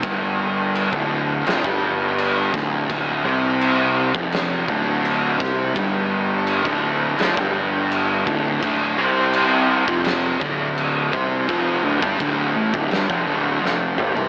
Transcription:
<<
  \new Staff \with { instrumentName = "Distorted electric guitar" } { \clef bass \time 4/4 \key d \minor \tempo 4 = 84 <g, g>4~ <g, g>16 <d, d>8. <f, f>16 <g, g>4~ <g, g>16 <d, d>8 | <d, d>8 <c c'>4~ <c c'>16 <f, f>8. <d, d>4 <c c'>8 | <g, g>4~ <g, g>16 <d, d>8. <f, f>16 <g, g>4~ <g, g>16 <d, d>8 | <d, d>8 <c c'>4~ <c c'>16 <f, f>8. <d, d>4 <c c'>8 |
<f, f>8 <d, d>16 <g, g>16 <d, d>8 <a, a>16 <d, d>16 <g, g>16 <f, f>16 <d, d>8 <f, f>8 <g, g>16 <c c'>16 | }
  \new Staff \with { instrumentName = "Fingered electric bass" } { \clef bass \time 4/4 \key d \minor g,,4~ g,,16 d,,8. f,,16 g,,4~ g,,16 d,,8 | d,,8 c,4~ c,16 f,,8. d,,4 c,8 | g,,4~ g,,16 d,,8. f,,16 g,,4~ g,,16 d,,8 | d,,8 c,4~ c,16 f,,8. d,,4 c,8 |
f,,8 d,,16 g,,16 d,,8 a,,16 d,,16 g,,16 f,,16 d,,8 f,,8 g,,16 c,16 | }
  \new DrumStaff \with { instrumentName = "Drums" } \drummode { \time 4/4 <cymc bd>4 cymc16 bd8. <cymc sn>16 bd8. cymc8 <bd sn>8 | <cymc bd>4 cymc8. bd16 <cymc sn>8 bd8 cymc8 <bd sn>8 | <cymc bd>4 cymc16 bd8. <cymc sn>16 bd8. cymc8 bd8 | <cymc bd>4 cymc8. bd16 <cymc sn>8 bd8 cymc8 bd8 |
<cymc bd>8. bd16 <cymc bd>8. bd16 <cymc sn>16 bd8. sn8 toml16 tomfh16 | }
>>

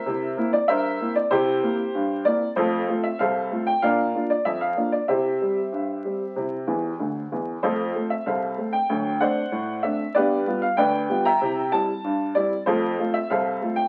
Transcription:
<<
  \new Staff \with { instrumentName = "Upright piano" } { \time 2/4 \key c \mixolydian \tempo 4 = 95 <bes' c'' e''>8. d''16 <bes' c'' e''>8. d''16 | <e' g' c''>4. d''8 | <f' a' c''>8. e''16 <a' c'' f''>8. g''16 | <bes' d'' f''>8. d''16 e''16 f''8 d''16 |
<g' c'' e''>2~ | <g' c'' e''>4. r8 | <f' a' c''>8. e''16 <a' c'' f''>8. g''16~ | g''8 <c'' d'' fis''>4 e''8 |
<g' b' d''>8. f''16 <b' d'' g''>8. <e'' g'' bes''>16~ | <e'' g'' bes''>8 a''4 d''8 | <f' a' c''>8. e''16 <a' c'' f''>8. g''16 | }
  \new Staff \with { instrumentName = "Upright piano" } { \time 2/4 \key c \mixolydian <c e'>8 <bes c' e'>8 g,8 <bes c' e'>8 | c8 <bes c' e'>8 g,8 <bes c' e'>8 | <f, a>8 <a c' f'>8 c,8 <a c' f'>8 | <bes, d'>8 <bes d' f'>8 f,8 <bes d' f'>8 |
<c e'>8 <g c'>8 g,8 <g c'>8 | <c e'>8 <e, e>8 <d, d>8 <e, e>8 | <f, a>8 <a c'>8 c,8 <a c'>8 | <d, fis>8 <a c' d'>8 a,8 <a c' d'>8 |
<g, b>8 <g b f'>8 d,8 <g b f'>8 | <c e'>8 <g c' e'>8 g,8 <g c' e'>8 | <f, a>8 <a c' f'>8 c,8 <a c' f'>8 | }
>>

